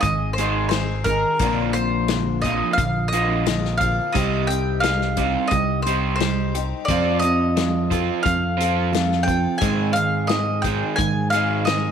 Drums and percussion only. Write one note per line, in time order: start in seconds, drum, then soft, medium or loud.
0.02 kick loud
0.02 closed hi-hat medium
0.38 closed hi-hat medium
0.71 snare medium
0.71 closed hi-hat medium
1.06 kick medium
1.06 closed hi-hat medium
1.39 kick loud
1.39 closed hi-hat medium
1.74 closed hi-hat medium
2.08 snare loud
2.08 closed hi-hat medium
2.44 kick medium
2.44 closed hi-hat medium
2.78 kick loud
2.78 closed hi-hat medium
3.12 closed hi-hat medium
3.46 snare loud
3.46 closed hi-hat medium
3.65 snare soft
3.81 kick medium
3.81 closed hi-hat medium
4.15 kick loud
4.15 closed hi-hat medium
4.50 closed hi-hat medium
4.83 snare loud
4.83 closed hi-hat medium
5.01 snare soft
5.17 kick medium
5.17 closed hi-hat medium
5.51 kick medium
5.51 closed hi-hat medium
5.86 closed hi-hat medium
6.20 snare medium
6.20 closed hi-hat medium
6.55 closed hi-hat medium
6.88 kick loud
6.88 closed hi-hat medium
7.22 closed hi-hat medium
7.57 snare loud
7.57 closed hi-hat medium
7.91 kick medium
7.91 closed hi-hat medium
8.26 kick loud
8.26 closed hi-hat medium
8.60 closed hi-hat medium
8.94 snare loud
8.94 closed hi-hat medium
9.12 snare soft
9.28 kick medium
9.28 closed hi-hat medium
9.61 kick loud
9.61 closed hi-hat medium
9.95 closed hi-hat medium
10.29 snare loud
10.29 closed hi-hat medium
10.64 kick medium
10.64 closed hi-hat medium
10.98 kick loud
10.98 closed hi-hat medium
11.32 closed hi-hat medium
11.67 snare loud
11.67 closed hi-hat medium